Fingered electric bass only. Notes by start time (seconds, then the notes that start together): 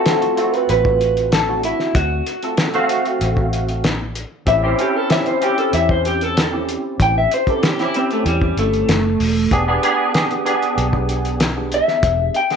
0.69 A1
1.95 D2
3.21 A1
4.47 A1
5.73 E2
7.00 A1
8.26 E2
8.57 G1
8.89 F#1
9.20 E1
9.52 E1
10.78 B1
12.03 E1